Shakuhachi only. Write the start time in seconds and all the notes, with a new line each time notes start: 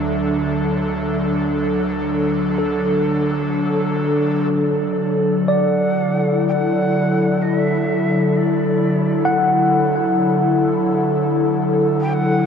4.55 D5
5.50 F#5
6.48 G5
6.52 F#5
7.42 D#5
7.61 E5
8.37 D5
12.01 G5
12.14 F#5